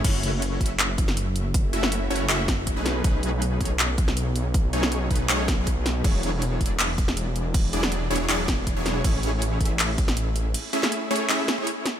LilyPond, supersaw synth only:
\new Staff \with { instrumentName = "Supersaw synth" } { \time 4/4 \key fis \minor \tempo 4 = 160 <a cis' e' fis' cis''>8 <a cis' e' fis' cis''>4 <a cis' e' fis' e''>2~ <a cis' e' fis' e''>8~ | <a cis' e' fis' e''>8 <a cis' e' fis' e''>4 <a cis' e' fis' cis''>8 <a cis' e' fis' e''>4~ <a cis' e' fis' e''>16 <a cis' dis' gis' b'>8. | <a cis' dis' gis' b'>8 <a cis' dis' gis' b'>4 <a cis' dis' gis' cis''>2~ <a cis' dis' gis' cis''>8~ | <a cis' dis' gis' cis''>8 <a cis' dis' gis' cis''>4 <a cis' dis' gis' b'>8 <a cis' dis' gis' cis''>8. <a cis' dis' gis' b'>4~ <a cis' dis' gis' b'>16 |
<fis d' e' gis' cis''>8 <fis d' e' gis' cis''>4 <fis d' e' gis' d''>2~ <fis d' e' gis' d''>8~ | <fis d' e' gis' d''>8 <fis d' e' gis' d''>4 <fis d' e' gis' cis''>8 <fis d' e' gis' d''>4~ <fis d' e' gis' d''>16 <fis d' e' gis' cis''>8. | <a cis' e' gis' cis''>8 <a cis' e' gis' cis''>4 <a cis' e' gis' e''>2~ <a cis' e' gis' e''>8~ | <a cis' e' gis' e''>8 <a cis' e' gis' e''>4 <a cis' e' gis' cis''>8 <a cis' e' gis' e''>8. <a cis' e' gis' cis''>4~ <a cis' e' gis' cis''>16 | }